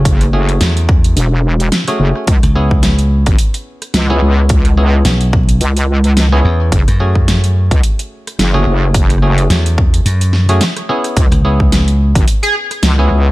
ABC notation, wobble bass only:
X:1
M:4/4
L:1/16
Q:"Swing 16ths" 1/4=108
K:C#m
V:1 name="Wobble bass" clef=bass
F,,,4 z4 E,,,4 z2 F,,, z | C,, z6 G,,, z4 C,,2 C,,2- | C,,4 z4 C,,6 z2 | F,,, z6 C,, z4 F,,,2 F,,,2- |
F,,,4 z12 | C,, z6 G,,, z4 C,,2 C,,2 |]